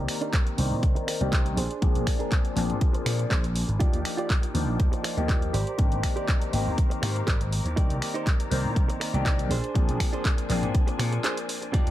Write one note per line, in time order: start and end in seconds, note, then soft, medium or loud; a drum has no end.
0.00 0.55 D#3 medium
0.00 1.55 D#3 medium
0.00 0.55 A#3 medium
0.00 0.55 C4 medium
0.00 0.56 G4 medium
0.00 0.56 D5 medium
0.00 1.53 D5 medium
0.00 1.53 A#5 medium
0.08 finger snap medium
0.08 open hi-hat loud
0.21 0.33 D4 medium
0.21 0.33 D#4 medium
0.21 0.34 A#4 medium
0.21 closed hi-hat soft
0.33 kick loud
0.33 clap loud
0.33 closed hi-hat medium
0.46 muted clean electric guitar stroke soft
0.46 closed hi-hat medium
0.57 0.73 C2 medium
0.57 1.17 D#3 medium
0.57 1.17 A#3 medium
0.57 1.18 C4 medium
0.57 1.18 C5 loud
0.57 1.18 D5 medium
0.57 open hi-hat loud
0.71 0.79 A#2 medium
0.83 0.92 C2 medium
0.83 muted clean electric guitar stroke soft
0.83 kick loud
0.83 closed hi-hat medium
0.95 muted clean electric guitar stroke loud
0.95 closed hi-hat medium
1.07 finger snap medium
1.07 muted clean electric guitar stroke medium
1.07 open hi-hat loud
1.21 1.52 C2 medium
1.21 1.56 D#3 medium
1.21 1.56 A#3 medium
1.21 1.56 C4 medium
1.21 1.56 G4 loud
1.21 1.56 D5 medium
1.21 muted clean electric guitar stroke soft
1.21 closed hi-hat soft
1.32 1.45 D4 medium
1.32 1.46 D#4 medium
1.32 1.46 C5 medium
1.32 kick loud
1.32 clap loud
1.32 closed hi-hat medium
1.46 closed hi-hat soft
1.57 1.66 A#1 medium
1.57 2.07 D4 medium
1.57 3.78 D4 medium
1.57 2.07 G#4 medium
1.57 3.78 C5 medium
1.57 2.07 C5 loud
1.57 3.78 G#5 medium
1.57 open hi-hat loud
1.71 closed hi-hat soft
1.82 1.91 A#1 loud
1.82 2.53 F3 loud
1.82 2.54 A#3 medium
1.82 2.54 C4 medium
1.82 2.54 D4 medium
1.82 2.54 G#4 loud
1.82 kick loud
1.82 closed hi-hat medium
1.95 2.04 A#1 medium
1.95 closed hi-hat soft
2.07 finger snap medium
2.07 kick medium
2.07 open hi-hat loud
2.19 2.31 D4 medium
2.19 2.32 G#4 medium
2.19 2.32 A#4 medium
2.19 closed hi-hat soft
2.32 kick loud
2.32 clap loud
2.32 closed hi-hat medium
2.44 muted clean electric guitar stroke soft
2.44 closed hi-hat soft
2.55 2.71 A#1 medium
2.55 3.77 F3 medium
2.55 3.77 A#3 medium
2.55 3.78 C4 medium
2.55 3.78 D4 medium
2.55 3.78 G#4 loud
2.55 clap soft
2.55 open hi-hat loud
2.70 2.78 G#2 medium
2.70 closed hi-hat soft
2.81 muted clean electric guitar stroke soft
2.81 kick loud
2.81 closed hi-hat medium
2.93 muted clean electric guitar stroke loud
2.93 closed hi-hat medium
3.05 3.24 A#2 medium
3.05 finger snap medium
3.05 muted clean electric guitar stroke medium
3.05 open hi-hat loud
3.19 muted clean electric guitar stroke soft
3.19 closed hi-hat soft
3.30 3.63 A#1 medium
3.30 3.44 D4 medium
3.30 3.44 G#4 medium
3.30 3.44 C5 medium
3.30 kick loud
3.30 clap loud
3.30 closed hi-hat medium
3.44 closed hi-hat soft
3.55 muted clean electric guitar stroke soft
3.55 open hi-hat loud
3.68 3.77 G#1 medium
3.68 muted clean electric guitar stroke soft
3.68 closed hi-hat soft
3.80 3.90 D#2 loud
3.80 4.52 F3 medium
3.80 4.52 A#3 medium
3.80 4.52 D4 medium
3.80 4.52 D#4 medium
3.80 3.99 F4 loud
3.80 5.52 F4 medium
3.80 3.99 G4 loud
3.80 4.52 G4 medium
3.80 4.00 D5 loud
3.80 5.52 G5 medium
3.80 9.47 D6 medium
3.80 kick loud
3.80 closed hi-hat medium
3.93 4.02 D#2 medium
3.93 closed hi-hat soft
4.05 finger snap medium
4.05 open hi-hat medium
4.17 4.30 F4 medium
4.17 4.30 G4 medium
4.17 4.30 D5 loud
4.17 closed hi-hat soft
4.30 kick loud
4.30 clap loud
4.30 closed hi-hat medium
4.42 muted clean electric guitar stroke soft
4.42 closed hi-hat medium
4.54 4.68 D#2 medium
4.54 5.14 F3 medium
4.54 5.14 A#3 medium
4.54 5.14 D4 medium
4.54 5.15 D#4 medium
4.54 5.15 C5 loud
4.54 open hi-hat loud
4.68 4.76 A#1 medium
4.79 muted clean electric guitar stroke soft
4.79 kick loud
4.79 closed hi-hat medium
4.92 muted clean electric guitar stroke loud
4.92 closed hi-hat soft
5.04 finger snap medium
5.04 muted clean electric guitar stroke medium
5.04 open hi-hat loud
5.17 5.48 D#2 loud
5.17 5.52 F3 medium
5.17 5.52 A#3 medium
5.17 5.53 D#4 medium
5.17 5.53 G4 loud
5.17 muted clean electric guitar stroke soft
5.17 closed hi-hat soft
5.29 5.42 F4 medium
5.29 5.42 G4 medium
5.29 5.43 D5 medium
5.29 kick loud
5.29 clap loud
5.29 closed hi-hat medium
5.42 closed hi-hat soft
5.53 5.63 G#1 medium
5.53 6.03 G4 medium
5.53 7.75 G4 medium
5.53 6.04 A#4 medium
5.53 7.75 C5 medium
5.53 6.04 C5 medium
5.53 6.04 D5 loud
5.53 7.75 A#5 medium
5.53 open hi-hat loud
5.67 closed hi-hat soft
5.78 5.88 G#1 loud
5.78 6.50 D#3 medium
5.78 6.50 A#3 medium
5.78 6.50 C4 medium
5.78 6.50 D4 medium
5.78 6.51 G4 loud
5.78 kick loud
5.78 closed hi-hat medium
5.92 6.00 G#1 medium
5.92 closed hi-hat soft
6.03 finger snap medium
6.03 kick medium
6.03 open hi-hat medium
6.16 6.28 G4 medium
6.16 6.28 A#4 medium
6.16 6.29 C5 medium
6.16 6.29 D5 medium
6.16 closed hi-hat soft
6.28 kick loud
6.28 clap loud
6.28 closed hi-hat medium
6.41 muted clean electric guitar stroke soft
6.41 closed hi-hat medium
6.53 6.68 G#1 medium
6.53 7.74 D#3 medium
6.53 7.74 A#3 medium
6.53 7.74 C4 medium
6.53 7.75 G4 loud
6.53 open hi-hat medium
6.66 6.75 D#2 medium
6.77 muted clean electric guitar stroke soft
6.77 kick loud
6.77 closed hi-hat medium
6.90 muted clean electric guitar stroke loud
6.90 closed hi-hat medium
7.02 7.21 G#2 medium
7.02 finger snap medium
7.02 muted clean electric guitar stroke medium
7.02 open hi-hat loud
7.15 muted clean electric guitar stroke soft
7.15 closed hi-hat soft
7.27 7.59 G#1 medium
7.27 7.40 G4 medium
7.27 7.41 A#4 medium
7.27 7.41 C5 medium
7.27 7.41 D5 medium
7.27 kick loud
7.27 clap loud
7.27 closed hi-hat medium
7.41 closed hi-hat medium
7.52 muted clean electric guitar stroke soft
7.52 open hi-hat loud
7.65 7.73 D#2 medium
7.65 muted clean electric guitar stroke soft
7.65 closed hi-hat soft
7.76 7.86 C2 loud
7.76 8.48 D#3 medium
7.76 9.49 D#3 medium
7.76 8.49 A#3 medium
7.76 8.49 C4 medium
7.76 7.96 D#4 loud
7.76 8.49 G4 medium
7.76 7.96 A#4 loud
7.76 8.49 D5 medium
7.76 7.96 D5 loud
7.76 9.49 A#5 medium
7.76 kick loud
7.76 closed hi-hat medium
7.90 7.98 C2 medium
7.90 closed hi-hat soft
8.02 finger snap medium
8.02 open hi-hat medium
8.14 8.26 D#4 medium
8.14 8.27 A#4 medium
8.14 8.27 C5 medium
8.14 closed hi-hat soft
8.27 kick loud
8.27 clap loud
8.27 closed hi-hat medium
8.39 muted clean electric guitar stroke soft
8.39 closed hi-hat medium
8.50 8.66 C2 medium
8.50 9.11 D#3 medium
8.50 9.11 A#3 medium
8.50 9.11 C4 medium
8.50 9.11 C5 loud
8.50 9.11 D5 medium
8.50 open hi-hat loud
8.64 8.73 A#2 medium
8.75 8.85 C2 medium
8.75 muted clean electric guitar stroke soft
8.75 kick loud
8.75 closed hi-hat medium
8.89 muted clean electric guitar stroke loud
8.89 closed hi-hat medium
9.00 finger snap medium
9.00 muted clean electric guitar stroke medium
9.00 open hi-hat loud
9.13 9.45 C2 medium
9.13 9.49 D#3 medium
9.13 9.49 A#3 medium
9.13 9.49 C4 medium
9.13 9.49 D4 medium
9.13 9.49 G4 loud
9.13 muted clean electric guitar stroke soft
9.13 closed hi-hat soft
9.25 9.39 D#4 medium
9.25 9.39 A#4 medium
9.25 9.39 D5 medium
9.25 kick loud
9.25 clap loud
9.25 closed hi-hat medium
9.39 closed hi-hat medium
9.50 9.60 A#1 medium
9.50 10.00 D4 medium
9.50 11.72 D4 medium
9.50 10.00 G#4 medium
9.50 11.72 C5 medium
9.50 10.01 C5 loud
9.50 11.72 G#5 medium
9.50 open hi-hat medium
9.64 closed hi-hat soft
9.74 9.85 A#1 loud
9.74 10.46 F3 loud
9.74 10.47 A#3 medium
9.74 10.47 C4 medium
9.74 10.47 D4 medium
9.74 10.47 G#4 loud
9.74 kick loud
9.74 closed hi-hat medium
9.88 9.97 A#1 medium
9.88 closed hi-hat medium
10.00 finger snap medium
10.00 kick medium
10.00 open hi-hat loud
10.13 10.25 D4 medium
10.13 10.25 G#4 medium
10.13 10.25 C5 loud
10.13 closed hi-hat soft
10.25 kick loud
10.25 clap loud
10.25 closed hi-hat medium
10.38 muted clean electric guitar stroke soft
10.38 closed hi-hat medium
10.49 10.64 A#1 medium
10.49 11.71 F3 medium
10.49 11.71 A#3 medium
10.49 11.71 C4 medium
10.49 11.71 D4 medium
10.49 11.71 G#4 loud
10.49 clap soft
10.49 open hi-hat loud
10.63 10.71 G#2 medium
10.63 closed hi-hat soft
10.74 muted clean electric guitar stroke soft
10.74 kick loud
10.74 closed hi-hat medium
10.87 muted clean electric guitar stroke loud
10.87 closed hi-hat medium
10.99 11.17 A#2 medium
10.99 finger snap medium
10.99 muted clean electric guitar stroke medium
10.99 open hi-hat loud
11.12 muted clean electric guitar stroke soft
11.12 closed hi-hat soft
11.24 11.37 D4 medium
11.24 11.37 G#4 medium
11.24 11.38 C5 medium
11.24 clap loud
11.24 closed hi-hat medium
11.37 closed hi-hat medium
11.48 muted clean electric guitar stroke soft
11.48 open hi-hat loud
11.62 muted clean electric guitar stroke soft
11.62 closed hi-hat soft
11.73 11.83 D#2 loud
11.73 11.91 F3 medium
11.73 11.91 A#3 medium
11.73 11.91 D4 medium
11.73 11.91 D#4 medium
11.73 11.91 F4 loud
11.73 11.91 F4 medium
11.73 11.91 G4 loud
11.73 11.91 G4 medium
11.73 11.91 D5 medium
11.73 11.91 D5 loud
11.73 11.91 G5 medium
11.73 kick loud
11.73 closed hi-hat medium
11.73 tambourine soft
11.87 11.91 D#2 medium
11.87 closed hi-hat soft